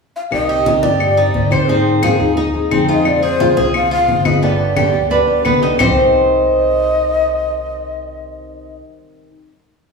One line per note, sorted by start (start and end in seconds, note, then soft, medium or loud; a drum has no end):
0.16 0.22 F5 medium
0.31 0.80 C2 medium
0.31 0.65 C3 medium
0.31 0.65 D#3 medium
0.31 0.66 G3 medium
0.31 0.66 C4 medium
0.31 0.66 G4 medium
0.31 0.84 D#5 loud
0.31 high conga soft
0.31 claves medium
0.49 0.66 G4 medium
0.49 high conga soft
0.66 0.83 C3 medium
0.66 0.83 D#3 medium
0.66 0.83 G3 medium
0.66 0.83 C4 medium
0.66 0.83 D#4 medium
0.66 0.82 G4 medium
0.66 high conga medium
0.82 1.31 G2 medium
0.82 1.00 G3 soft
0.82 1.00 C4 soft
0.82 1.00 G4 medium
0.82 1.17 G4 medium
0.82 1.53 D5 loud
0.82 high conga medium
1.00 muted steel-string acoustic guitar stroke medium
1.00 high conga soft
1.00 claves medium
1.17 1.34 G3 soft
1.17 1.34 C4 soft
1.17 1.51 D#4 medium
1.17 1.34 G4 soft
1.17 high conga soft
1.34 2.15 G#2 medium
1.34 1.51 D#3 soft
1.34 1.51 G3 medium
1.34 1.50 C4 medium
1.34 1.49 G4 medium
1.34 high conga medium
1.51 1.67 D#3 medium
1.51 1.68 G3 medium
1.51 1.68 C4 medium
1.51 1.68 G4 medium
1.51 1.70 C5 medium
1.51 1.69 C5 medium
1.51 high conga medium
1.51 claves medium
1.68 2.01 D#3 medium
1.68 2.01 G#3 medium
1.68 2.02 C4 medium
1.68 2.02 D#4 medium
1.68 2.20 G#4 medium
1.68 2.03 G#4 medium
1.68 high conga soft
1.86 high conga soft
2.02 2.19 D#3 medium
2.02 2.19 G#3 medium
2.02 2.19 C4 medium
2.02 2.19 D#4 medium
2.02 2.39 F4 loud
2.02 2.37 G#4 medium
2.02 2.18 G#4 medium
2.02 high conga medium
2.02 claves medium
2.19 2.52 D#2 medium
2.19 2.36 C4 soft
2.19 2.36 D#4 soft
2.19 2.37 G#4 medium
2.19 high conga soft
2.37 2.70 D#4 medium
2.37 2.77 D#4 loud
2.37 muted steel-string acoustic guitar stroke medium
2.37 high conga soft
2.54 2.70 D#2 medium
2.54 2.70 C4 soft
2.54 2.71 D#4 soft
2.54 2.71 G#4 medium
2.54 high conga soft
2.71 3.51 F2 medium
2.71 2.88 G#3 medium
2.71 2.88 C4 medium
2.71 2.88 D#4 medium
2.71 2.87 G#4 medium
2.71 high conga medium
2.71 claves medium
2.88 3.05 G#3 medium
2.88 3.05 C4 medium
2.88 3.05 D#4 medium
2.88 3.22 F4 medium
2.88 3.05 G#4 medium
2.88 3.09 D#5 medium
2.88 high conga soft
3.05 3.38 C3 medium
3.05 3.39 F3 medium
3.05 3.39 G#3 medium
3.05 3.40 C4 medium
3.05 3.40 F4 medium
3.05 3.23 D5 medium
3.05 high conga soft
3.05 claves medium
3.23 3.39 G#4 medium
3.23 3.71 C5 loud
3.23 high conga soft
3.40 3.56 C3 medium
3.40 3.57 F3 medium
3.40 3.57 G#3 medium
3.40 3.57 C4 medium
3.40 3.57 F4 medium
3.40 3.55 F4 medium
3.40 high conga medium
3.57 4.05 C2 medium
3.57 3.73 G#3 soft
3.57 3.73 C4 soft
3.57 3.73 F4 soft
3.57 3.90 G#4 medium
3.57 high conga medium
3.74 3.91 F5 loud
3.74 muted steel-string acoustic guitar stroke medium
3.74 high conga soft
3.74 claves medium
3.91 4.07 G#3 soft
3.91 4.08 C4 soft
3.91 4.24 F4 medium
3.91 4.08 F4 soft
3.91 4.27 F5 loud
3.91 high conga soft
4.08 4.88 G1 medium
4.08 4.25 F3 medium
4.08 4.24 G#3 soft
4.08 4.24 C4 medium
4.08 4.24 F4 medium
4.08 high conga medium
4.25 4.42 F3 medium
4.25 4.42 G#3 medium
4.25 4.42 C4 medium
4.25 4.42 F4 medium
4.25 4.42 B4 medium
4.25 4.45 D#5 medium
4.25 high conga medium
4.25 claves medium
4.42 4.75 B2 medium
4.42 4.75 D3 medium
4.42 4.76 G3 medium
4.42 4.76 B3 medium
4.42 4.76 G4 medium
4.42 5.46 D5 medium
4.42 high conga soft
4.59 high conga soft
4.76 4.93 B2 medium
4.76 4.93 D3 medium
4.76 4.93 G3 medium
4.76 4.92 B3 medium
4.76 5.10 G4 medium
4.76 4.92 G4 medium
4.76 5.12 G4 medium
4.76 high conga medium
4.76 claves medium
4.93 5.26 D2 medium
4.93 5.09 G3 soft
4.93 5.09 B3 soft
4.93 5.10 G4 soft
4.93 high conga soft
5.10 5.44 D4 medium
5.10 5.44 B4 loud
5.10 muted steel-string acoustic guitar stroke medium
5.10 high conga soft
5.27 5.44 D2 medium
5.27 5.42 G3 soft
5.27 5.43 B3 soft
5.27 5.43 G4 medium
5.27 high conga soft
5.43 5.75 C2 medium
5.43 5.60 D3 medium
5.43 5.61 G3 medium
5.43 5.60 B3 medium
5.43 5.62 B3 medium
5.43 5.60 G4 medium
5.43 5.77 B4 medium
5.43 high conga medium
5.43 claves medium
5.61 5.78 D3 medium
5.61 5.78 G3 medium
5.61 5.78 B3 medium
5.61 5.79 D#4 medium
5.61 5.78 G4 medium
5.61 high conga soft
5.78 8.76 C2 medium
5.78 9.28 C3 medium
5.78 9.28 D#3 medium
5.78 9.29 G3 medium
5.78 8.75 C4 medium
5.78 9.30 C4 medium
5.78 8.76 G4 medium
5.78 9.30 G4 medium
5.78 8.76 C5 medium
5.78 5.94 D5 loud
5.78 8.77 D#5 medium
5.78 low conga medium
5.78 claves medium
5.94 8.76 D#5 loud